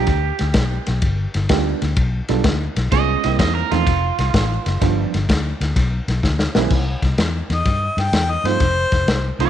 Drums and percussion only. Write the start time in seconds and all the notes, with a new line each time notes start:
0.07 kick, snare, ride
0.39 snare, ride
0.54 kick, snare, ride
0.86 snare, ride
1.02 kick, ride
1.34 snare, ride
1.49 kick, snare, ride
1.82 snare, ride
1.96 kick, ride
2.28 snare, ride
2.44 kick, snare, ride
2.76 snare, ride
2.92 kick, snare, ride
3.24 snare, ride
3.39 kick, snare, ride
3.72 snare, ride
3.87 kick, snare, ride
4.19 snare, ride
4.34 kick, snare, ride
4.66 snare, ride
4.82 kick, snare, ride
5.14 snare, ride
5.29 kick, snare, ride
5.61 snare, ride
5.76 kick, snare, ride
6.08 snare, ride
6.23 kick, snare
6.39 snare
6.55 snare
6.70 kick, snare, crash
7.02 kick, snare, ride
7.18 snare, ride
7.50 snare, ride
7.65 kick, snare, ride
7.98 snare, ride
8.13 snare, ride
8.45 snare, ride
8.60 kick, snare, ride
8.92 kick, snare, ride
9.08 snare, ride
9.40 snare, ride